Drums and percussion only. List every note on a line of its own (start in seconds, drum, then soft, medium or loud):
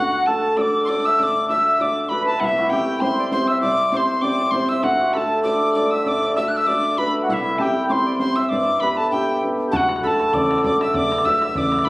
9.73 bodhran medium
9.89 bodhran medium
9.96 bodhran medium
10.03 bodhran medium
10.20 bodhran medium
10.34 bodhran medium
10.51 bodhran medium
10.58 bodhran medium
10.64 bodhran loud
10.81 bodhran medium
10.94 bodhran medium
11.12 bodhran medium
11.18 bodhran medium
11.25 bodhran medium
11.42 bodhran medium
11.55 bodhran medium
11.72 bodhran medium
11.79 bodhran medium
11.85 bodhran medium